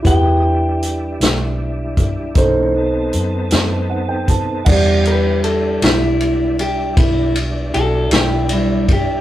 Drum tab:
CC |------------|x-----------|
RD |------------|-xxxxxxxxxxx|
HH |x-xx-xx-xx-x|------------|
SD |---o-----o--|---o-----o--|
BD |o----oo----o|o-----o----o|